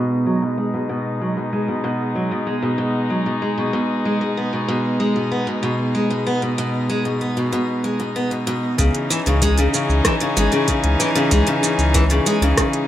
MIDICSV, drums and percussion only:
0, 0, Header, 1, 2, 480
1, 0, Start_track
1, 0, Key_signature, 4, "minor"
1, 0, Tempo, 631579
1, 919, Time_signature, 4, 2, 24, 8
1, 9785, End_track
2, 0, Start_track
2, 0, Title_t, "Drums"
2, 6677, Note_on_c, 9, 36, 103
2, 6678, Note_on_c, 9, 42, 72
2, 6684, Note_on_c, 9, 82, 47
2, 6753, Note_off_c, 9, 36, 0
2, 6754, Note_off_c, 9, 42, 0
2, 6760, Note_off_c, 9, 82, 0
2, 6799, Note_on_c, 9, 42, 43
2, 6875, Note_off_c, 9, 42, 0
2, 6925, Note_on_c, 9, 82, 83
2, 7001, Note_off_c, 9, 82, 0
2, 7039, Note_on_c, 9, 42, 33
2, 7045, Note_on_c, 9, 82, 34
2, 7115, Note_off_c, 9, 42, 0
2, 7121, Note_off_c, 9, 82, 0
2, 7158, Note_on_c, 9, 36, 98
2, 7158, Note_on_c, 9, 42, 68
2, 7163, Note_on_c, 9, 82, 45
2, 7234, Note_off_c, 9, 36, 0
2, 7234, Note_off_c, 9, 42, 0
2, 7239, Note_off_c, 9, 82, 0
2, 7277, Note_on_c, 9, 42, 46
2, 7283, Note_on_c, 9, 82, 29
2, 7353, Note_off_c, 9, 42, 0
2, 7359, Note_off_c, 9, 82, 0
2, 7401, Note_on_c, 9, 82, 81
2, 7477, Note_off_c, 9, 82, 0
2, 7522, Note_on_c, 9, 82, 33
2, 7598, Note_off_c, 9, 82, 0
2, 7636, Note_on_c, 9, 37, 82
2, 7636, Note_on_c, 9, 42, 68
2, 7638, Note_on_c, 9, 36, 105
2, 7642, Note_on_c, 9, 82, 43
2, 7712, Note_off_c, 9, 37, 0
2, 7712, Note_off_c, 9, 42, 0
2, 7714, Note_off_c, 9, 36, 0
2, 7718, Note_off_c, 9, 82, 0
2, 7756, Note_on_c, 9, 42, 42
2, 7832, Note_off_c, 9, 42, 0
2, 7880, Note_on_c, 9, 82, 83
2, 7956, Note_off_c, 9, 82, 0
2, 7994, Note_on_c, 9, 42, 28
2, 7999, Note_on_c, 9, 82, 31
2, 8070, Note_off_c, 9, 42, 0
2, 8075, Note_off_c, 9, 82, 0
2, 8115, Note_on_c, 9, 42, 67
2, 8117, Note_on_c, 9, 36, 101
2, 8121, Note_on_c, 9, 82, 43
2, 8191, Note_off_c, 9, 42, 0
2, 8193, Note_off_c, 9, 36, 0
2, 8197, Note_off_c, 9, 82, 0
2, 8236, Note_on_c, 9, 42, 44
2, 8312, Note_off_c, 9, 42, 0
2, 8361, Note_on_c, 9, 82, 76
2, 8437, Note_off_c, 9, 82, 0
2, 8478, Note_on_c, 9, 42, 30
2, 8483, Note_on_c, 9, 82, 34
2, 8554, Note_off_c, 9, 42, 0
2, 8559, Note_off_c, 9, 82, 0
2, 8598, Note_on_c, 9, 36, 110
2, 8598, Note_on_c, 9, 42, 68
2, 8603, Note_on_c, 9, 82, 48
2, 8674, Note_off_c, 9, 36, 0
2, 8674, Note_off_c, 9, 42, 0
2, 8679, Note_off_c, 9, 82, 0
2, 8715, Note_on_c, 9, 42, 42
2, 8791, Note_off_c, 9, 42, 0
2, 8844, Note_on_c, 9, 82, 86
2, 8920, Note_off_c, 9, 82, 0
2, 8959, Note_on_c, 9, 42, 32
2, 8965, Note_on_c, 9, 82, 37
2, 9035, Note_off_c, 9, 42, 0
2, 9041, Note_off_c, 9, 82, 0
2, 9077, Note_on_c, 9, 42, 70
2, 9079, Note_on_c, 9, 36, 104
2, 9082, Note_on_c, 9, 82, 44
2, 9153, Note_off_c, 9, 42, 0
2, 9155, Note_off_c, 9, 36, 0
2, 9158, Note_off_c, 9, 82, 0
2, 9196, Note_on_c, 9, 42, 43
2, 9201, Note_on_c, 9, 82, 31
2, 9272, Note_off_c, 9, 42, 0
2, 9277, Note_off_c, 9, 82, 0
2, 9320, Note_on_c, 9, 82, 84
2, 9396, Note_off_c, 9, 82, 0
2, 9442, Note_on_c, 9, 82, 35
2, 9518, Note_off_c, 9, 82, 0
2, 9557, Note_on_c, 9, 37, 80
2, 9557, Note_on_c, 9, 42, 72
2, 9558, Note_on_c, 9, 36, 107
2, 9563, Note_on_c, 9, 82, 45
2, 9633, Note_off_c, 9, 37, 0
2, 9633, Note_off_c, 9, 42, 0
2, 9634, Note_off_c, 9, 36, 0
2, 9639, Note_off_c, 9, 82, 0
2, 9678, Note_on_c, 9, 42, 44
2, 9754, Note_off_c, 9, 42, 0
2, 9785, End_track
0, 0, End_of_file